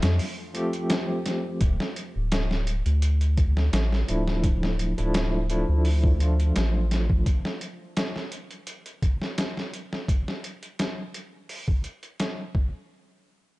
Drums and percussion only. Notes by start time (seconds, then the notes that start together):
0.02 snare, closed hi-hat
0.19 open hi-hat
0.55 closed hi-hat
0.73 closed hi-hat
0.90 snare, closed hi-hat
1.26 snare, closed hi-hat
1.61 kick, closed hi-hat
1.80 snare
1.96 closed hi-hat
2.32 snare, closed hi-hat
2.51 snare
2.67 closed hi-hat
2.86 closed hi-hat
3.02 closed hi-hat
3.21 closed hi-hat
3.37 kick, closed hi-hat
3.57 snare
3.73 snare, closed hi-hat
3.93 snare
4.08 closed hi-hat
4.28 snare
4.44 kick, closed hi-hat
4.63 snare
4.79 closed hi-hat
4.98 closed hi-hat
5.14 snare, closed hi-hat
5.50 closed hi-hat
5.85 open hi-hat
6.04 kick
6.20 closed hi-hat
6.40 closed hi-hat
6.56 snare, closed hi-hat
6.91 snare, closed hi-hat
7.10 kick
7.26 kick, closed hi-hat
7.45 snare
7.61 closed hi-hat
7.97 snare, closed hi-hat
8.16 snare
8.32 closed hi-hat
8.51 closed hi-hat
8.67 closed hi-hat
8.86 closed hi-hat
9.02 kick, closed hi-hat
9.22 snare
9.38 snare, closed hi-hat
9.57 snare
9.74 closed hi-hat
9.93 snare
10.08 kick, closed hi-hat
10.28 snare
10.44 closed hi-hat
10.63 closed hi-hat
10.79 snare, closed hi-hat
11.14 closed hi-hat
11.49 open hi-hat
11.68 kick
11.84 closed hi-hat
12.03 closed hi-hat
12.20 snare, closed hi-hat
12.55 kick